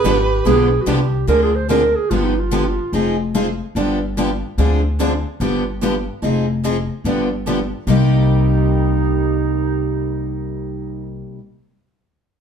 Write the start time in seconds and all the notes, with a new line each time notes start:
Already playing: B4
0.04 G#1 D3 F3 B3 D4 G4
0.45 B1 D3 F3 B3 D4 G4 G#4
0.82 F#4
0.86 C2 D3 F3 B3 D4 G4
1.27 D2 D3 F3 C4 D4 G#4 A#4
1.43 G#4
1.56 C5
1.69 D3 F3 C4 D4 G#4 A#4
1.96 G#4
2.10 G1 D3 F3 B3 D4 F4 G4
2.24 D#4
2.39 F4
2.51 D3 F3 B3 D4 G4
2.93 F1 F3 C4 D#4 G#4
3.35 F3 C4 D#4 G#4
3.75 G1 D3 F3 B3 D4 G4
4.17 D3 F3 B3 D4 G4
4.58 D2 D3 F3 C4 D4 G#4
5.00 D3 F3 C4 D4 G#4
5.40 G1 D3 F3 B3 D4 G4
5.82 D3 F3 B3 D4 G4
6.22 F1 F3 C4 D#4 G#4
6.65 F3 C4 D#4 G#4
7.04 G1 D3 F3 B3 D4 G4
7.47 D3 F3 B3 D4 G4
7.87 C2 C3 G3 A#3 D#4 G4